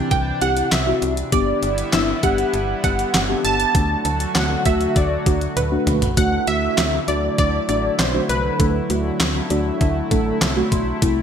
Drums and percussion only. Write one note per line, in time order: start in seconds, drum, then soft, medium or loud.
0.11 kick medium
0.11 closed hi-hat medium
0.41 closed hi-hat medium
0.57 closed hi-hat medium
0.72 snare loud
0.72 clap loud
0.72 closed hi-hat medium
1.02 closed hi-hat medium
1.17 closed hi-hat medium
1.32 kick loud
1.32 closed hi-hat medium
1.63 closed hi-hat medium
1.78 closed hi-hat medium
1.93 snare loud
1.93 clap loud
1.93 closed hi-hat medium
2.23 kick medium
2.23 closed hi-hat medium
2.38 closed hi-hat soft
2.54 closed hi-hat medium
2.84 kick medium
2.84 closed hi-hat medium
2.99 closed hi-hat medium
3.14 snare loud
3.14 clap loud
3.14 closed hi-hat medium
3.45 closed hi-hat medium
3.60 closed hi-hat medium
3.75 kick loud
3.75 closed hi-hat medium
4.05 closed hi-hat medium
4.20 closed hi-hat medium
4.35 snare loud
4.35 clap loud
4.35 closed hi-hat medium
4.65 kick medium
4.65 closed hi-hat medium
4.81 closed hi-hat soft
4.96 kick medium
4.96 closed hi-hat medium
5.26 kick medium
5.26 closed hi-hat medium
5.41 closed hi-hat medium
5.57 closed hi-hat medium
5.57 high tom medium
5.87 closed hi-hat medium
5.87 mid tom medium
6.02 closed hi-hat medium
6.02 floor tom loud
6.17 kick loud
6.17 closed hi-hat medium
6.47 closed hi-hat medium
6.78 snare loud
6.78 clap loud
6.78 closed hi-hat medium
7.08 closed hi-hat medium
7.38 kick medium
7.38 closed hi-hat medium
7.69 closed hi-hat medium
7.99 snare loud
7.99 clap medium
7.99 closed hi-hat medium
8.29 closed hi-hat medium
8.60 kick loud
8.60 closed hi-hat medium
8.90 closed hi-hat medium
9.20 snare loud
9.20 clap loud
9.20 closed hi-hat medium
9.50 closed hi-hat medium
9.81 kick medium
9.81 closed hi-hat medium
10.11 kick medium
10.11 closed hi-hat medium
10.42 snare loud
10.42 clap loud
10.42 closed hi-hat medium
10.72 kick medium
10.72 closed hi-hat medium
11.02 kick loud
11.02 closed hi-hat medium